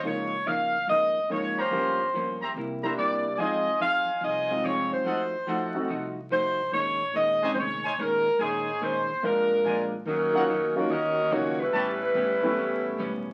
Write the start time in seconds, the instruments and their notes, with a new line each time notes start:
0.03 upright bass C#2, hollow-body jazz guitar C#3 F3 A#3 D#4, grand piano G#3 A#3 D#4 F4, saxophone section C#5
0.46 hollow-body jazz guitar C#3 F3 A#3 D#4, saxophone section F5
0.87 upright bass G#1, hollow-body jazz guitar C#3 F3 A#3 D#4, saxophone section D#5
1.30 hollow-body jazz guitar C#3 F3 A#3 D#4, grand piano G#3 A#3 D#4 F4, saxophone section C#5
1.57 trumpet section C#4 G4 F5 A#5, saxophone section C5
1.70 upright bass G1, hollow-body jazz guitar G2 F3 A#3, grand piano G3 A#3 C#4 F4
1.75 hollow-body jazz guitar C#4
2.13 hollow-body jazz guitar G2 F3 A#3 C#4
2.41 trumpet section G4 C5 E5 A#5
2.54 upright bass C2, hollow-body jazz guitar C3 G3 A#3
2.58 hollow-body jazz guitar E4
2.83 grand piano G3 A#3 D4 E4, trumpet section G4 C5 E5 A#5
2.97 hollow-body jazz guitar C3 G3 A#3 E4, saxophone section D5
3.35 upright bass F2, hollow-body jazz guitar F3, grand piano G#3, trumpet section F4 C5 D#5 G#5, saxophone section D5
3.39 grand piano C4 D#4 F4, hollow-body jazz guitar C4 D#4 G#4, saxophone section D#5
3.80 hollow-body jazz guitar F3 C4 D#4 G#4, saxophone section F5
4.08 muted upright bass stroke
4.21 upright bass C2, hollow-body jazz guitar F3 C4 D#4 G#4, saxophone section D#5
4.51 grand piano G#3 C4 D#4 F4
4.63 hollow-body jazz guitar F3 C4 D#4 G#4, saxophone section C#5
4.90 upright bass F#2, saxophone section C5
5.04 upright bass F2, hollow-body jazz guitar F3 A3 D#4 F#4, trumpet section F4 A4 D#5 F#5
5.47 hollow-body jazz guitar F3 A3 D#4 F#4, trumpet section F4 A4 D#5 F#5
5.75 grand piano A3 C4 D#4 F#4
5.88 upright bass C2, hollow-body jazz guitar F3 A3 D#4 F#4
6.30 hollow-body jazz guitar F3 A3 D#4 F#4, saxophone section C5
6.72 upright bass A#1, hollow-body jazz guitar A#2 D#3 G#3 C#4, saxophone section C#5
7.14 hollow-body jazz guitar A#2 D#3 G#3 C#4, saxophone section D#5
7.43 grand piano G#3 C4 C#4 D#4, trumpet section D#4 C5 C#5 G#5
7.54 upright bass F1, hollow-body jazz guitar A#2 D#3 G#3, saxophone section C5
7.59 hollow-body jazz guitar C#4, saxophone section C#5
7.84 trumpet section D#4 C5 C#5 G#5
7.98 upright bass G#1, hollow-body jazz guitar A#2 D#3 G#3 C#4, saxophone section A#4
8.39 upright bass A#1, hollow-body jazz guitar A#2 D#3 G#3 C#4, trumpet section D#4 C5 C#5 G#5, saxophone section G#4
8.81 hollow-body jazz guitar A#2 D#3 G#3 C#4, saxophone section C5
9.09 muted upright bass stroke
9.22 upright bass A#1, hollow-body jazz guitar A#2 F3 G#3 D4, grand piano G#3 A#3 D4 F4, saxophone section A#4
9.64 hollow-body jazz guitar A#2 F3 G#3 D4, grand piano G#3 A#3 D4 F4, trumpet section F4 A#4 D5 G#5
10.05 upright bass D#2, hollow-body jazz guitar D#3 A#3 C#4 F#4, saxophone section F#3 C#4 D#4 A#4
10.34 grand piano F#3 A#3 C#4 D#4 F4, trumpet section D#4 A#4 C#5 F#5
10.48 upright bass F#2, hollow-body jazz guitar D#3 A#3 C#4 F#4
10.76 grand piano F#3 A#3 C#4 D#4 F4, saxophone section A#3 D#4 F#4 C#5
10.89 upright bass D#2, hollow-body jazz guitar D#3 A#3 C#4 F#4, saxophone section C#4 F#4 A#4 D#5
11.31 upright bass C#2, hollow-body jazz guitar D#3 A#3 C#4 F#4, grand piano F#3 A#3 C#4 D#4 F4, saxophone section A#3 D#4 F#4 C#5
11.60 saxophone section G3 C#4 E4 B4
11.73 upright bass A1, hollow-body jazz guitar A2 G3 B3 C#4, trumpet section G4 B4 C#5 A5
12.15 upright bass G1, hollow-body jazz guitar A2 G3 B3 C#4
12.43 grand piano G3 A3 B3 C#4 E4
12.57 upright bass A1, hollow-body jazz guitar A2 G3 B3 C#4
12.98 upright bass E1, hollow-body jazz guitar A2 G3 B3 C#4